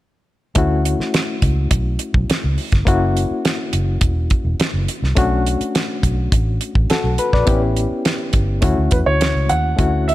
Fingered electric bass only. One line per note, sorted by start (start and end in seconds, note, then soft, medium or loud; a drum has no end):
0.56 0.94 D2 medium
0.99 muted fingered electric bass stroke soft
1.42 1.67 C#2 medium
1.71 1.96 B1 medium
2.14 2.27 B1 medium
2.29 muted fingered electric bass stroke soft
2.44 2.56 C#2 medium
2.73 2.85 G1 medium
2.87 3.24 F#1 loud
3.31 muted fingered electric bass stroke soft
3.73 3.98 F#1 medium
4.01 4.27 E1 medium
4.45 4.57 E1 medium
4.59 muted fingered electric bass stroke soft
4.74 4.86 F#1 medium
5.02 5.15 C2 medium
5.17 5.55 B1 loud
5.60 muted fingered electric bass stroke soft
6.03 6.28 B1 medium
6.32 6.57 A1 medium
6.75 6.88 A1 medium
7.04 7.17 B1 medium
7.33 7.46 A#1 medium
7.47 7.85 A1 medium
7.91 muted fingered electric bass stroke soft
8.34 8.59 G1 medium
8.63 8.75 D2 medium
8.78 8.90 D2 medium
9.07 9.31 D2 medium
9.35 9.48 C#2 medium
9.51 9.75 D#2 medium
9.79 10.15 D2 medium